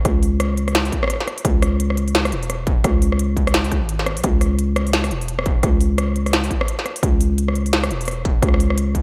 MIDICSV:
0, 0, Header, 1, 3, 480
1, 0, Start_track
1, 0, Key_signature, 4, "minor"
1, 0, Tempo, 348837
1, 74, Time_signature, 4, 2, 24, 8
1, 12414, End_track
2, 0, Start_track
2, 0, Title_t, "808-style bass"
2, 0, Program_c, 0, 38
2, 70, Note_on_c, 0, 37, 98
2, 1260, Note_off_c, 0, 37, 0
2, 1992, Note_on_c, 0, 37, 102
2, 3192, Note_on_c, 0, 28, 92
2, 3213, Note_off_c, 0, 37, 0
2, 3901, Note_off_c, 0, 28, 0
2, 3913, Note_on_c, 0, 37, 100
2, 5258, Note_on_c, 0, 32, 95
2, 5279, Note_off_c, 0, 37, 0
2, 5741, Note_on_c, 0, 35, 80
2, 5762, Note_off_c, 0, 32, 0
2, 5826, Note_off_c, 0, 35, 0
2, 5834, Note_on_c, 0, 37, 100
2, 7032, Note_on_c, 0, 28, 92
2, 7052, Note_off_c, 0, 37, 0
2, 7741, Note_off_c, 0, 28, 0
2, 7751, Note_on_c, 0, 37, 97
2, 8940, Note_off_c, 0, 37, 0
2, 9671, Note_on_c, 0, 37, 97
2, 10877, Note_on_c, 0, 28, 88
2, 10898, Note_off_c, 0, 37, 0
2, 11583, Note_off_c, 0, 28, 0
2, 11592, Note_on_c, 0, 37, 94
2, 12414, Note_off_c, 0, 37, 0
2, 12414, End_track
3, 0, Start_track
3, 0, Title_t, "Drums"
3, 69, Note_on_c, 9, 36, 125
3, 69, Note_on_c, 9, 37, 52
3, 69, Note_on_c, 9, 42, 85
3, 207, Note_off_c, 9, 36, 0
3, 207, Note_off_c, 9, 37, 0
3, 207, Note_off_c, 9, 42, 0
3, 312, Note_on_c, 9, 46, 66
3, 449, Note_off_c, 9, 46, 0
3, 550, Note_on_c, 9, 37, 80
3, 550, Note_on_c, 9, 42, 67
3, 687, Note_off_c, 9, 37, 0
3, 687, Note_off_c, 9, 42, 0
3, 790, Note_on_c, 9, 42, 40
3, 928, Note_off_c, 9, 42, 0
3, 932, Note_on_c, 9, 37, 54
3, 932, Note_on_c, 9, 46, 35
3, 1030, Note_on_c, 9, 38, 123
3, 1030, Note_on_c, 9, 42, 81
3, 1070, Note_off_c, 9, 37, 0
3, 1070, Note_off_c, 9, 46, 0
3, 1168, Note_off_c, 9, 38, 0
3, 1168, Note_off_c, 9, 42, 0
3, 1174, Note_on_c, 9, 46, 34
3, 1270, Note_on_c, 9, 36, 67
3, 1273, Note_on_c, 9, 42, 40
3, 1311, Note_off_c, 9, 46, 0
3, 1408, Note_off_c, 9, 36, 0
3, 1410, Note_off_c, 9, 42, 0
3, 1415, Note_on_c, 9, 37, 76
3, 1432, Note_off_c, 9, 37, 0
3, 1432, Note_on_c, 9, 37, 65
3, 1480, Note_off_c, 9, 37, 0
3, 1480, Note_on_c, 9, 37, 54
3, 1512, Note_off_c, 9, 37, 0
3, 1512, Note_on_c, 9, 37, 43
3, 1512, Note_on_c, 9, 42, 70
3, 1563, Note_off_c, 9, 37, 0
3, 1563, Note_on_c, 9, 37, 35
3, 1593, Note_off_c, 9, 37, 0
3, 1593, Note_on_c, 9, 37, 29
3, 1650, Note_off_c, 9, 42, 0
3, 1657, Note_on_c, 9, 38, 37
3, 1731, Note_off_c, 9, 37, 0
3, 1755, Note_on_c, 9, 37, 54
3, 1755, Note_on_c, 9, 42, 38
3, 1795, Note_off_c, 9, 38, 0
3, 1892, Note_off_c, 9, 37, 0
3, 1892, Note_off_c, 9, 42, 0
3, 1895, Note_on_c, 9, 46, 64
3, 1991, Note_on_c, 9, 36, 125
3, 1994, Note_on_c, 9, 42, 83
3, 2032, Note_off_c, 9, 46, 0
3, 2129, Note_off_c, 9, 36, 0
3, 2131, Note_off_c, 9, 42, 0
3, 2234, Note_on_c, 9, 37, 77
3, 2234, Note_on_c, 9, 46, 61
3, 2372, Note_off_c, 9, 37, 0
3, 2372, Note_off_c, 9, 46, 0
3, 2476, Note_on_c, 9, 42, 69
3, 2613, Note_off_c, 9, 42, 0
3, 2618, Note_on_c, 9, 37, 53
3, 2715, Note_on_c, 9, 42, 39
3, 2756, Note_off_c, 9, 37, 0
3, 2853, Note_off_c, 9, 42, 0
3, 2857, Note_on_c, 9, 46, 34
3, 2956, Note_on_c, 9, 38, 119
3, 2956, Note_on_c, 9, 42, 80
3, 2995, Note_off_c, 9, 46, 0
3, 3093, Note_off_c, 9, 38, 0
3, 3093, Note_off_c, 9, 42, 0
3, 3099, Note_on_c, 9, 37, 75
3, 3099, Note_on_c, 9, 46, 34
3, 3195, Note_on_c, 9, 42, 39
3, 3237, Note_off_c, 9, 37, 0
3, 3237, Note_off_c, 9, 46, 0
3, 3333, Note_off_c, 9, 42, 0
3, 3338, Note_on_c, 9, 46, 37
3, 3436, Note_on_c, 9, 37, 52
3, 3436, Note_on_c, 9, 42, 71
3, 3476, Note_off_c, 9, 46, 0
3, 3573, Note_off_c, 9, 37, 0
3, 3573, Note_off_c, 9, 42, 0
3, 3671, Note_on_c, 9, 36, 113
3, 3671, Note_on_c, 9, 42, 38
3, 3809, Note_off_c, 9, 36, 0
3, 3809, Note_off_c, 9, 42, 0
3, 3911, Note_on_c, 9, 36, 124
3, 3912, Note_on_c, 9, 37, 76
3, 3912, Note_on_c, 9, 42, 78
3, 4049, Note_off_c, 9, 36, 0
3, 4050, Note_off_c, 9, 37, 0
3, 4050, Note_off_c, 9, 42, 0
3, 4155, Note_on_c, 9, 46, 65
3, 4293, Note_off_c, 9, 46, 0
3, 4298, Note_on_c, 9, 37, 52
3, 4394, Note_on_c, 9, 42, 64
3, 4436, Note_off_c, 9, 37, 0
3, 4532, Note_off_c, 9, 42, 0
3, 4631, Note_on_c, 9, 36, 62
3, 4636, Note_on_c, 9, 42, 37
3, 4769, Note_off_c, 9, 36, 0
3, 4774, Note_off_c, 9, 42, 0
3, 4778, Note_on_c, 9, 37, 76
3, 4778, Note_on_c, 9, 46, 37
3, 4872, Note_on_c, 9, 38, 118
3, 4872, Note_on_c, 9, 42, 74
3, 4916, Note_off_c, 9, 37, 0
3, 4916, Note_off_c, 9, 46, 0
3, 5009, Note_off_c, 9, 38, 0
3, 5009, Note_off_c, 9, 42, 0
3, 5014, Note_on_c, 9, 46, 34
3, 5112, Note_on_c, 9, 36, 64
3, 5113, Note_on_c, 9, 37, 49
3, 5113, Note_on_c, 9, 42, 37
3, 5152, Note_off_c, 9, 46, 0
3, 5249, Note_off_c, 9, 36, 0
3, 5251, Note_off_c, 9, 37, 0
3, 5251, Note_off_c, 9, 42, 0
3, 5351, Note_on_c, 9, 42, 68
3, 5489, Note_off_c, 9, 42, 0
3, 5495, Note_on_c, 9, 38, 37
3, 5592, Note_on_c, 9, 37, 75
3, 5592, Note_on_c, 9, 42, 36
3, 5632, Note_off_c, 9, 38, 0
3, 5730, Note_off_c, 9, 37, 0
3, 5730, Note_off_c, 9, 42, 0
3, 5735, Note_on_c, 9, 46, 65
3, 5829, Note_on_c, 9, 42, 76
3, 5831, Note_on_c, 9, 36, 120
3, 5872, Note_off_c, 9, 46, 0
3, 5966, Note_off_c, 9, 42, 0
3, 5969, Note_off_c, 9, 36, 0
3, 6070, Note_on_c, 9, 37, 51
3, 6070, Note_on_c, 9, 46, 68
3, 6207, Note_off_c, 9, 37, 0
3, 6207, Note_off_c, 9, 46, 0
3, 6311, Note_on_c, 9, 42, 64
3, 6448, Note_off_c, 9, 42, 0
3, 6552, Note_on_c, 9, 37, 78
3, 6552, Note_on_c, 9, 42, 38
3, 6690, Note_off_c, 9, 37, 0
3, 6690, Note_off_c, 9, 42, 0
3, 6697, Note_on_c, 9, 46, 37
3, 6789, Note_on_c, 9, 38, 115
3, 6789, Note_on_c, 9, 42, 75
3, 6834, Note_off_c, 9, 46, 0
3, 6927, Note_off_c, 9, 38, 0
3, 6927, Note_off_c, 9, 42, 0
3, 6934, Note_on_c, 9, 37, 51
3, 6934, Note_on_c, 9, 46, 36
3, 7032, Note_on_c, 9, 42, 37
3, 7072, Note_off_c, 9, 37, 0
3, 7072, Note_off_c, 9, 46, 0
3, 7170, Note_off_c, 9, 42, 0
3, 7175, Note_on_c, 9, 46, 38
3, 7271, Note_on_c, 9, 42, 64
3, 7313, Note_off_c, 9, 46, 0
3, 7409, Note_off_c, 9, 42, 0
3, 7413, Note_on_c, 9, 37, 74
3, 7509, Note_on_c, 9, 42, 36
3, 7511, Note_on_c, 9, 36, 103
3, 7550, Note_off_c, 9, 37, 0
3, 7647, Note_off_c, 9, 42, 0
3, 7649, Note_off_c, 9, 36, 0
3, 7749, Note_on_c, 9, 37, 54
3, 7749, Note_on_c, 9, 42, 73
3, 7751, Note_on_c, 9, 36, 122
3, 7886, Note_off_c, 9, 37, 0
3, 7886, Note_off_c, 9, 42, 0
3, 7888, Note_off_c, 9, 36, 0
3, 7989, Note_on_c, 9, 46, 69
3, 8127, Note_off_c, 9, 46, 0
3, 8231, Note_on_c, 9, 37, 78
3, 8231, Note_on_c, 9, 42, 64
3, 8368, Note_off_c, 9, 37, 0
3, 8368, Note_off_c, 9, 42, 0
3, 8473, Note_on_c, 9, 42, 35
3, 8610, Note_off_c, 9, 42, 0
3, 8618, Note_on_c, 9, 37, 53
3, 8618, Note_on_c, 9, 46, 39
3, 8714, Note_on_c, 9, 38, 113
3, 8714, Note_on_c, 9, 42, 75
3, 8755, Note_off_c, 9, 37, 0
3, 8755, Note_off_c, 9, 46, 0
3, 8851, Note_off_c, 9, 38, 0
3, 8851, Note_off_c, 9, 42, 0
3, 8857, Note_on_c, 9, 46, 39
3, 8951, Note_on_c, 9, 36, 62
3, 8955, Note_on_c, 9, 42, 36
3, 8995, Note_off_c, 9, 46, 0
3, 9089, Note_off_c, 9, 36, 0
3, 9092, Note_off_c, 9, 42, 0
3, 9097, Note_on_c, 9, 37, 83
3, 9195, Note_on_c, 9, 42, 64
3, 9234, Note_off_c, 9, 37, 0
3, 9333, Note_off_c, 9, 42, 0
3, 9340, Note_on_c, 9, 38, 36
3, 9434, Note_on_c, 9, 37, 52
3, 9434, Note_on_c, 9, 42, 36
3, 9478, Note_off_c, 9, 38, 0
3, 9572, Note_off_c, 9, 37, 0
3, 9572, Note_off_c, 9, 42, 0
3, 9576, Note_on_c, 9, 46, 69
3, 9672, Note_on_c, 9, 36, 115
3, 9676, Note_on_c, 9, 42, 75
3, 9714, Note_off_c, 9, 46, 0
3, 9809, Note_off_c, 9, 36, 0
3, 9814, Note_off_c, 9, 42, 0
3, 9915, Note_on_c, 9, 46, 70
3, 10053, Note_off_c, 9, 46, 0
3, 10157, Note_on_c, 9, 42, 64
3, 10295, Note_off_c, 9, 42, 0
3, 10298, Note_on_c, 9, 37, 55
3, 10395, Note_on_c, 9, 42, 38
3, 10436, Note_off_c, 9, 37, 0
3, 10533, Note_off_c, 9, 42, 0
3, 10540, Note_on_c, 9, 46, 37
3, 10637, Note_on_c, 9, 38, 113
3, 10637, Note_on_c, 9, 42, 78
3, 10677, Note_off_c, 9, 46, 0
3, 10774, Note_off_c, 9, 38, 0
3, 10774, Note_off_c, 9, 42, 0
3, 10781, Note_on_c, 9, 37, 81
3, 10781, Note_on_c, 9, 46, 39
3, 10879, Note_on_c, 9, 42, 36
3, 10919, Note_off_c, 9, 37, 0
3, 10919, Note_off_c, 9, 46, 0
3, 11017, Note_off_c, 9, 42, 0
3, 11019, Note_on_c, 9, 46, 38
3, 11082, Note_off_c, 9, 46, 0
3, 11082, Note_on_c, 9, 46, 31
3, 11116, Note_on_c, 9, 37, 57
3, 11116, Note_on_c, 9, 42, 69
3, 11162, Note_off_c, 9, 46, 0
3, 11162, Note_on_c, 9, 46, 26
3, 11253, Note_off_c, 9, 37, 0
3, 11253, Note_off_c, 9, 42, 0
3, 11300, Note_off_c, 9, 46, 0
3, 11353, Note_on_c, 9, 36, 101
3, 11355, Note_on_c, 9, 42, 37
3, 11490, Note_off_c, 9, 36, 0
3, 11493, Note_off_c, 9, 42, 0
3, 11593, Note_on_c, 9, 36, 115
3, 11595, Note_on_c, 9, 37, 39
3, 11595, Note_on_c, 9, 42, 84
3, 11675, Note_off_c, 9, 37, 0
3, 11675, Note_on_c, 9, 37, 51
3, 11730, Note_off_c, 9, 36, 0
3, 11733, Note_off_c, 9, 42, 0
3, 11752, Note_off_c, 9, 37, 0
3, 11752, Note_on_c, 9, 37, 65
3, 11836, Note_on_c, 9, 46, 68
3, 11889, Note_off_c, 9, 37, 0
3, 11974, Note_off_c, 9, 46, 0
3, 11976, Note_on_c, 9, 37, 57
3, 12076, Note_on_c, 9, 42, 67
3, 12114, Note_off_c, 9, 37, 0
3, 12214, Note_off_c, 9, 42, 0
3, 12312, Note_on_c, 9, 36, 58
3, 12315, Note_on_c, 9, 42, 39
3, 12414, Note_off_c, 9, 36, 0
3, 12414, Note_off_c, 9, 42, 0
3, 12414, End_track
0, 0, End_of_file